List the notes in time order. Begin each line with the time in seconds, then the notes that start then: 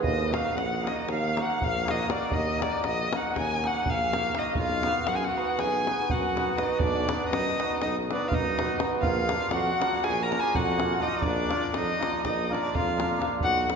0.01 D#2 D#5, davul low
0.20 davul high
0.30 A#3 D#4 F#4 A#4 F5, davul high
0.46 davul high
0.55 A#1 F#5, davul high
0.73 davul high
0.83 A#3 D#4 F#4 A#4 D#5
0.87 davul high
0.99 davul high
1.07 D#2, davul high
1.11 F5
1.23 davul high
1.36 A#3 D#4 F#4 A#4, davul high
1.42 F#5
1.50 davul high
1.61 A#1 F5, davul low
1.65 F5
1.85 A#3 D#4 F#4 A#4, davul high
1.91 D#5
1.99 davul high
2.07 A#3 D#4 F#4 A#4, davul high
2.11 D5
2.23 davul high
2.30 D#2 D#5, davul low
2.35 D#5
2.48 davul high
2.58 A#3 D#4 F#4 A#4, davul high
2.62 D5
2.82 A#1 D#5, davul high
2.88 D#5
3.13 A#3 D#4 F#4 A#4 F#5, davul high
3.17 F#5
3.26 davul high
3.35 D#2 G#5, davul high, davul low
3.64 A#3 D#4 F#4 A#4 F#5, davul high
3.68 F#5
3.86 A#1 F5, davul low
3.90 F5
4.00 davul high
4.13 A#3 D#4 F#4 A#4, davul high
4.25 davul high
4.35 A#3 D#4 F#4 A#4 D#5, davul high
4.45 davul high
4.55 B1 F4 F5, davul low
4.83 B3 D#4 F#4 B4, davul high
4.96 davul high
5.07 F#2 F#4 F#5, davul high
5.15 G#4 G#5
5.21 F#5, davul high
5.26 F#4
5.37 B3 D#4 F#4 B4
5.59 B1 G#4 G#5, davul high
5.74 davul high
5.87 B3 D#4 F#4 B4, davul high
6.00 davul high
6.10 F#2 F#4 F#5, davul low
6.35 B3 D#4 F#4 B4, davul high
6.57 B3 D#4 F#4 B4 D#5, davul high
6.68 davul high
6.78 B1 D4 D5, davul low
7.08 B3 D#4 F#4 B4, davul high
7.21 davul high
7.29 F#2 D#4 D#5
7.33 davul high
7.47 davul high
7.59 B3 D#4 F#4 B4, davul high
7.82 B1 D#4 D#5, davul high
7.96 davul high
8.11 B3 D4 D#4 F#4 B4 D5, davul high
8.22 davul high
8.28 F4 F5
8.32 F#2 D#4 D#5, davul low
8.57 B3 D#4 F#4 B4, davul high
8.79 B3 D#4 F#4 B4, davul high
9.00 A#1 F4 F5, davul low
9.28 A#3 D4 F4 A#4, davul high
9.42 davul high
9.51 F2 F#4 F#5, davul high
9.67 davul high
9.79 A#3 D4 F4 A#4, davul high
10.04 A#1 G#4 G#5, davul high
10.18 davul high
10.23 A#4 A#5
10.30 A#3 D4 F4 A#4, davul high
10.40 G#4 G#5, davul high
10.54 F2 F#4 F#5, davul low
10.77 A#3 D4 F4 A#4, davul high
10.98 A#3 D4 D#4 F4 A#4 D#5
11.12 davul high
11.22 A#1 D4 D5, davul low
11.48 A#3 D4 F4 A#4, davul high
11.62 davul high
11.72 F2 D#4 D#5, davul high
11.89 davul high
11.99 A#3 D4 F4 A#4, davul high
12.14 davul high
12.24 A#1 D#4 D#5, davul high, davul low
12.49 A#3 D4 F4 A#4 D5
12.54 davul high
12.65 davul high
12.75 F2 F4 F5, davul low
12.88 davul high
12.97 A#3 D4 F4 A#4, davul high
13.11 davul high
13.18 A#3 D4 F4 A#4, davul high
13.40 B1 F#4 F#5, davul low
13.69 B3 D#4 F#4 B4, davul high